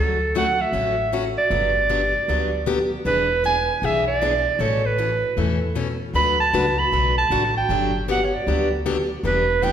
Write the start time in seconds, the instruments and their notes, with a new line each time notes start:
Already playing: upright bass D2, steel-string acoustic guitar D3 F#3 A3 C#4 F#4
0.00 clarinet A4
0.35 steel-string acoustic guitar D3 F#3 A3 C#4 F#4, clarinet F#5
0.61 clarinet E5
0.73 upright bass A1, steel-string acoustic guitar D3 F#3 A3 C#4 F#4
1.12 steel-string acoustic guitar D3 F#3 A3 C#4 F#4
1.38 clarinet D5
1.50 upright bass G1, steel-string acoustic guitar D3 F#3 B3 D4 G4
1.89 steel-string acoustic guitar D3 F#3 B3 D4 G4
2.28 upright bass D2, steel-string acoustic guitar D3 F#3 B3 D4 G4
2.66 steel-string acoustic guitar D3 F#3 B3 D4 G4
3.05 upright bass E1, steel-string acoustic guitar E3 B3 D4 G#4, clarinet B4
3.44 steel-string acoustic guitar E3 B3 D4 G#4, clarinet G#5
3.82 upright bass B1, steel-string acoustic guitar E3 B3 D4 G#4, clarinet E5
4.07 clarinet D5
4.22 steel-string acoustic guitar E3 B3 D4 G#4
4.59 upright bass A1, steel-string acoustic guitar B2 E3 A3 C#4 A4, clarinet C#5
4.86 clarinet B4
4.98 steel-string acoustic guitar B2 E3 A3 C#4 A4
5.37 upright bass E2, steel-string acoustic guitar B2 E3 A3 C#4 A4
5.75 steel-string acoustic guitar B2 E3 A3 C#4 A4
6.13 upright bass D2, steel-string acoustic guitar D3 F#3 A3 D4 F#4 B4, clarinet B5
6.40 clarinet A5
6.53 upright bass C#2, steel-string acoustic guitar D3 F#3 A3 D4 F#4 B4
6.79 clarinet B5
6.92 upright bass B1, steel-string acoustic guitar D3 F#3 A3 D4 F#4 B4
7.18 clarinet A5
7.30 upright bass A1, steel-string acoustic guitar D3 F#3 A3 D4 F#4 B4
7.57 clarinet G5
7.69 upright bass G1, steel-string acoustic guitar D3 F#3 B3 D4 G4
8.08 steel-string acoustic guitar D3 F#3 B3 D4 G4, clarinet F#5
8.25 clarinet C#5
8.35 clarinet D5
8.47 upright bass D2, steel-string acoustic guitar D3 F#3 B3 D4 G4
8.86 steel-string acoustic guitar D3 F#3 B3 D4 G4
9.23 upright bass E1, steel-string acoustic guitar E3 B3 D4 G4, clarinet B4
9.62 steel-string acoustic guitar E3 B3 D4 G4, clarinet G5